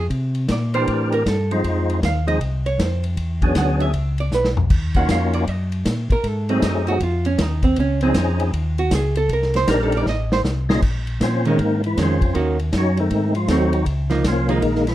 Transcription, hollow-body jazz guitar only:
0.52 0.74 D5 medium
0.75 1.10 C5 medium
1.14 1.26 A#4 medium
1.28 1.51 A4 medium
2.05 2.27 F5 medium
2.28 2.63 D#5 medium
2.66 2.81 C#5 medium
2.81 3.04 C5 medium
3.58 3.81 F#5 medium
3.81 4.17 E5 medium
4.20 4.33 D5 medium
4.34 4.49 B4 medium
4.96 5.09 F#5 loud
5.11 5.34 F5 medium
5.34 5.49 D5 loud
5.49 6.11 D#5 medium
6.12 6.27 A#4 medium
6.27 6.49 A4 medium
6.50 6.62 C4 medium
6.64 6.87 D#4 medium
6.88 7.01 F#4 loud
7.03 7.26 F4 medium
7.26 7.41 C#4 medium
7.41 7.64 D#4 medium
7.64 7.77 C4 medium
7.80 8.02 C#4 medium
8.03 8.17 C4 medium
8.17 8.41 D#4 medium
8.41 8.56 E4 medium
8.56 8.78 F4 medium
8.79 8.92 F#4 medium
8.95 9.17 G#4 medium
9.17 9.30 A4 loud
9.33 9.55 A#4 medium
9.56 9.68 C5 loud
9.71 9.82 A#4 medium
9.83 9.94 A4 medium
9.97 10.07 D5 medium
10.09 10.31 D#5 loud
10.33 10.40 C5 loud
11.46 11.58 D#3 medium
11.46 11.58 G#3 medium
11.46 11.58 C#4 medium
11.98 12.19 D#3 medium
11.98 12.19 G#3 medium
11.98 12.20 C#4 medium
12.34 12.57 D#3 medium
12.34 12.57 A#3 medium
12.34 12.57 C#4 medium
12.34 12.57 F#4 medium
13.49 13.71 F#3 medium
13.49 13.71 A3 medium
13.49 13.72 C4 medium
14.10 14.23 F3 medium
14.10 14.24 A#3 medium
14.10 14.24 D#4 medium
14.48 14.61 F3 medium
14.48 14.62 A#3 medium
14.48 14.62 D#4 medium

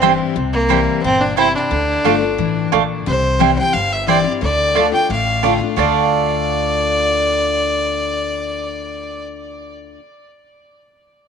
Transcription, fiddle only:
0.00 0.17 C4 medium
0.53 1.00 A#3 loud
1.03 1.22 C4 loud
1.21 1.37 D4 loud
1.37 1.54 E4 loud
1.55 2.69 D4 loud
3.08 3.55 C5 loud
3.58 3.75 G5 loud
3.73 3.94 F5 loud
3.92 4.07 E5 loud
4.08 4.32 D5 medium
4.42 4.90 D5 loud
4.93 5.09 G5 medium
5.11 5.58 F5 medium
5.78 9.26 D5 loud

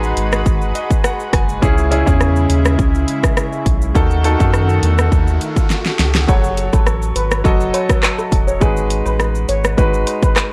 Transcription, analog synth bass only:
0.00 0.13 A1 medium
0.17 0.44 G#1 loud
0.46 0.73 G#1 loud
1.33 1.60 F#1 medium
1.63 2.03 C#2 loud
2.07 2.46 E2 medium
2.50 2.76 D#2 medium
2.79 3.06 C#2 loud
3.66 3.93 B1 medium
3.95 4.36 D#2 loud
4.40 4.79 F#2 medium
4.83 5.10 E2 loud
5.12 5.39 D#2 loud
5.99 6.26 C#2 medium
6.28 6.69 F#1 loud
6.73 7.12 A1 loud
7.16 7.43 G#1 medium
7.45 7.72 F#1 loud
8.32 8.59 E1 medium
8.61 9.02 G#1 loud
9.06 9.45 A1 loud
9.49 9.76 G#1 loud
9.78 10.05 G#1 loud

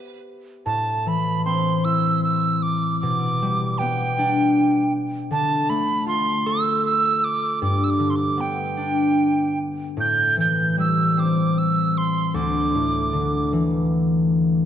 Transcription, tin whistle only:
0.66 1.10 A5 medium
1.08 1.45 B5 medium
1.45 1.86 C6 medium
1.85 2.23 E6 medium
2.24 2.64 E6 medium
2.62 2.99 D6 medium
3.00 3.80 D6 medium
3.78 4.93 G5 medium
5.32 5.71 A5 medium
5.70 6.07 B5 medium
6.08 6.48 C6 medium
6.47 6.84 E6 medium
6.86 7.26 E6 medium
7.24 7.62 D6 medium
7.63 7.86 D6 medium
7.84 7.92 E6 soft
7.90 8.11 D6 medium
8.10 8.17 C6 medium
8.16 8.42 D6 medium
8.41 9.59 G5 medium
10.00 10.36 G6 medium
10.40 10.76 G6 medium
10.80 11.21 E6 medium
11.20 11.60 D6 medium
11.58 11.99 E6 medium
11.98 12.36 C6 medium
12.35 13.52 D6 medium

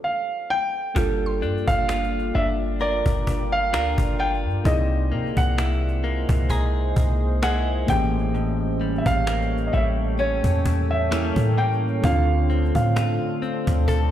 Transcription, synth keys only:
0.94 4.60 A#3 medium
0.94 4.61 D4 medium
0.94 4.62 F4 medium
0.98 4.62 A4 medium
4.63 7.83 A#3 medium
4.63 7.84 D#4 medium
4.63 7.85 E4 medium
4.68 7.85 G#4 medium
7.86 11.08 E3 medium
7.86 11.06 A#3 medium
7.86 11.07 C#4 medium
7.91 11.09 G4 medium
11.10 12.03 A#3 medium
11.10 12.04 C#4 soft
11.10 12.04 E4 soft
11.10 12.04 A4 medium
12.01 14.11 A3 medium
12.01 14.11 C4 medium
12.01 14.11 D4 medium
12.01 14.11 F4 medium

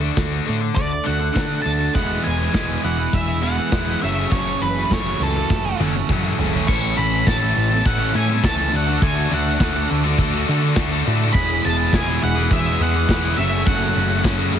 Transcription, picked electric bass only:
0.17 0.39 D2 medium
0.49 0.70 A2 medium
0.76 0.98 D2 medium
1.07 1.29 D2 medium
1.35 1.57 D3 medium
1.66 1.88 D2 medium
1.95 2.17 E1 medium
2.26 2.48 E1 medium
2.54 2.76 E1 medium
2.84 3.06 E1 medium
3.14 3.58 E1 medium
3.72 3.94 E1 medium
4.03 4.25 F#1 medium
4.32 4.54 F#1 loud
4.61 4.83 F#1 medium
4.91 5.13 F#1 medium
5.20 5.42 C#2 medium
5.50 5.72 F#1 medium
5.79 6.01 F#1 medium
6.09 6.31 F#2 medium
6.39 6.60 F#1 medium
6.68 6.93 A1 loud
6.97 7.22 A1 medium
7.27 7.51 A1 medium
7.56 7.81 A1 medium
7.86 8.10 A1 medium
8.15 8.39 A2 medium
8.44 8.68 C#2 medium
8.72 8.97 D2 medium
9.02 9.26 D2 loud
9.31 9.56 D2 loud
9.60 9.85 D2 medium
9.91 10.15 D2 medium
10.19 10.43 D2 medium
10.49 10.73 D3 medium
10.77 11.01 D2 loud
11.07 11.31 A2 loud
11.34 11.59 E1 loud
11.65 11.89 E1 medium
11.93 12.17 E1 medium
12.23 12.47 E1 medium
12.51 12.75 E1 loud
12.80 13.04 E2 medium
13.09 13.33 E1 medium
13.37 13.62 F#1 loud
13.67 13.91 F#1 loud
13.96 14.20 F#1 medium
14.25 14.49 F#1 medium
14.52 14.59 F#1 medium

